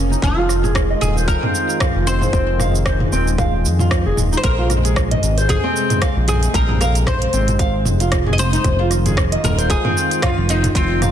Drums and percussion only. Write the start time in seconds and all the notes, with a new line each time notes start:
0.13 cabasa
0.22 kick, mid tom, cabasa
0.49 cross-stick, cabasa
0.64 mid tom, cabasa
0.75 kick, cross-stick, cabasa
1.02 mid tom, cabasa
1.18 cabasa
1.28 kick, cabasa
1.43 mid tom
1.55 cabasa
1.70 cabasa
1.80 kick, cross-stick, mid tom, cabasa
2.08 cabasa
2.22 mid tom, cabasa
2.33 kick, cabasa
2.60 cross-stick, mid tom, cabasa
2.75 cabasa
2.86 kick, cross-stick, cabasa
3.00 mid tom
3.13 cabasa
3.27 cabasa
3.38 kick, mid tom, cabasa
3.65 cabasa
3.79 mid tom, cabasa
3.91 kick, cross-stick, cabasa
4.17 mid tom, cabasa
4.33 cabasa
4.44 kick, closed hi-hat, cabasa
4.70 cross-stick, closed hi-hat, mid tom, cabasa
4.85 closed hi-hat, cabasa
4.96 kick, cross-stick, cabasa
5.11 closed hi-hat, mid tom
5.23 closed hi-hat, cabasa
5.38 closed hi-hat, cabasa
5.49 kick, closed hi-hat, mid tom, cabasa
5.76 cabasa
5.90 closed hi-hat, mid tom, cabasa
6.02 kick, cross-stick, closed hi-hat, cabasa
6.28 closed hi-hat, mid tom, cabasa
6.43 closed hi-hat, cabasa
6.54 kick, closed hi-hat, cabasa
6.69 mid tom
6.81 cross-stick, closed hi-hat, cabasa
6.95 closed hi-hat, cabasa
7.07 kick, cross-stick, mid tom, cabasa
7.22 closed hi-hat
7.33 closed hi-hat, cabasa
7.48 closed hi-hat, mid tom, cabasa
7.59 kick, closed hi-hat, cabasa
7.85 mid tom, cabasa
8.00 closed hi-hat, cabasa
8.12 kick, cross-stick, closed hi-hat, cabasa
8.27 mid tom
8.38 closed hi-hat, cabasa
8.53 closed hi-hat, cabasa
8.64 kick, closed hi-hat, mid tom, cabasa
8.91 cross-stick, closed hi-hat, cabasa
9.06 closed hi-hat, mid tom, cabasa
9.17 kick, cross-stick, cabasa
9.32 closed hi-hat
9.44 closed hi-hat, mid tom, cabasa
9.59 closed hi-hat, cabasa
9.70 kick, closed hi-hat, cabasa
9.85 mid tom
9.97 cabasa
10.11 closed hi-hat, cabasa
10.22 kick, cross-stick, closed hi-hat, mid tom, cabasa
10.49 closed hi-hat, cabasa
10.64 closed hi-hat, mid tom, cabasa
10.75 kick, closed hi-hat, cabasa
11.02 cross-stick, closed hi-hat, mid tom, cabasa